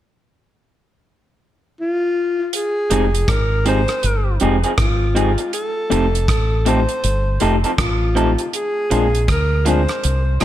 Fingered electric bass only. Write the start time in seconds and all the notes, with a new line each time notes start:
2.91 F1
3.29 G#1
4.04 G1
4.42 F1
4.79 G#1
5.92 F1
6.29 A1
7.04 G1
7.42 F1
7.79 A1
8.92 A#1
9.29 D2
10.05 C2